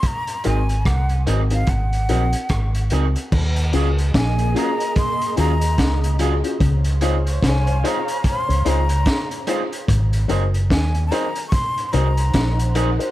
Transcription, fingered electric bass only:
X:1
M:4/4
L:1/16
Q:"Swing 16ths" 1/4=73
K:Ebdor
V:1 name="Fingered electric bass" clef=bass
z2 A,,,2 C,,2 A,,,2 A,,,2 B,,, z A,,,2 D,, z | E,,2 D,,2 B,,,2 z4 E,,2 D,,3 z | D,,4 C,,2 z3 D,, D,,2 z4 | A,,,2 G,,,2 E,,2 z4 C,,2 B,,,3 z |]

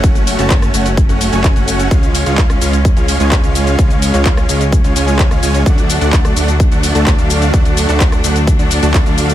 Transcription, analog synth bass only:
X:1
M:4/4
L:1/16
Q:1/4=128
K:C#phr
V:1 name="Analog synth bass" clef=bass
F,,,3 F,,,3 F,,,3 F,,,2 F,,,2 F,,,3 | C,,3 C,,3 C,,3 C,,2 C,,2 C,,3 | C,,3 C,,3 C,,3 C,, C,,3 C,, C,,2 | D,,3 D,,3 D,,3 D,,2 D,,2 D,,3 |
D,,3 D,,3 D,,3 D,,2 D,,2 D,,3 |]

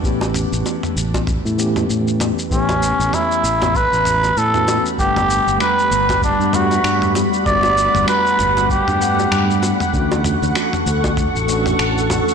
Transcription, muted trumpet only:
X:1
M:4/4
L:1/16
Q:"Swing 16ths" 1/4=97
K:Amix
V:1 name="Muted trumpet"
z16 | C4 E4 B4 A3 z | G4 B4 D2 F4 z2 | d4 B4 G6 z2 |
z16 |]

